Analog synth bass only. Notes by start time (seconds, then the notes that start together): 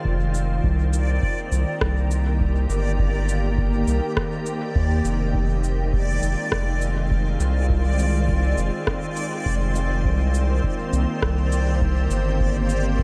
0.05 F1
0.64 C2
1.52 C2
1.82 C2
2.70 G1
3.88 C2
4.76 D#2
5.05 F1
6.23 F1
6.52 F1
7.40 C2
8.58 F1
9.46 F1
10.05 C2
10.93 C2
11.23 C2
12.11 G1